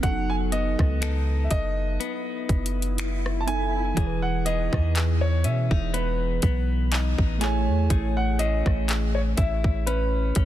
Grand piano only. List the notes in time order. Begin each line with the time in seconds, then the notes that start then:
0.03 F#5
0.30 G#5
0.52 D#5
1.44 E5
1.51 D#5
3.41 A5
3.47 G#5
4.22 F#5
4.46 D#5
5.21 C#5
5.44 E5
5.94 B4
7.41 G#5
8.17 F#5
8.39 D#5
9.15 C#5
9.37 E5
9.86 B4